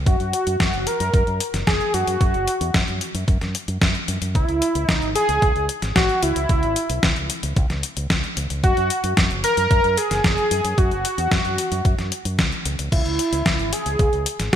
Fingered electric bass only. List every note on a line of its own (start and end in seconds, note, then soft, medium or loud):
0.06 0.18 F#2 medium
0.20 0.32 F#2 medium
0.47 0.58 F#2 medium
0.60 0.72 F#2 medium
0.74 0.85 F#1 medium
1.00 1.12 F#2 medium
1.14 1.25 F#2 loud
1.27 1.39 F#2 medium
1.54 1.65 F#1 medium
1.67 1.79 F#1 medium
1.94 2.06 F#2 medium
2.07 2.19 F#2 medium
2.21 2.32 F#2 medium
2.34 2.46 F#1 medium
2.61 2.72 E2 medium
2.74 2.86 F#2 loud
2.88 2.99 F#2 medium
3.14 3.26 F#2 medium
3.28 3.40 F#2 medium
3.41 3.53 F#2 medium
3.68 3.80 F#2 medium
3.81 3.93 F#2 medium
4.08 4.20 F#2 medium
4.22 4.33 F#2 medium
4.35 4.47 C#2 loud
4.48 4.60 C#2 medium
4.75 4.87 C#2 medium
4.89 5.00 C#2 medium
5.02 5.14 G#1 medium
5.29 5.40 C#2 medium
5.42 5.54 C#2 loud
5.56 5.67 C#2 medium
5.82 5.94 G#1 medium
5.96 6.07 G#1 medium
6.23 6.34 C#2 medium
6.36 6.48 C#2 medium
6.49 6.61 C#2 loud
6.63 6.74 G#1 medium
6.90 7.01 B1 medium
7.03 7.15 C#2 loud
7.16 7.28 C#2 medium
7.43 7.55 C#2 medium
7.57 7.68 C#2 loud
7.70 7.82 C#2 medium
7.97 8.08 C#2 medium
8.10 8.22 C#2 medium
8.37 8.48 C#2 medium
8.50 8.62 C#2 medium
8.64 8.75 F#2 medium
8.77 8.89 F#2 medium
9.04 9.15 F#2 medium
9.17 9.29 F#2 medium
9.31 9.42 F#1 medium
9.57 9.69 F#2 medium
9.71 9.82 F#2 loud
9.84 9.96 F#2 medium
10.11 10.23 F#1 medium
10.24 10.36 F#1 loud
10.51 10.63 F#2 medium
10.64 10.76 F#2 medium
10.78 10.89 F#2 medium
10.91 11.03 F#1 medium
11.18 11.30 E2 medium
11.31 11.43 F#2 loud
11.45 11.56 F#2 medium
11.72 11.83 F#2 medium
11.85 11.97 F#2 loud
11.98 12.10 F#2 medium
12.25 12.37 F#2 medium
12.39 12.50 C#2 medium
12.65 12.77 C#2 medium
12.79 12.90 C#2 medium
12.92 13.04 C#2 loud
13.06 13.17 C#2 medium
13.32 13.44 C#2 medium
13.46 13.57 C#2 medium
13.59 13.71 G#1 medium
13.86 13.98 C#2 medium
13.99 14.11 C#2 loud
14.13 14.24 C#2 medium
14.40 14.51 G#1 medium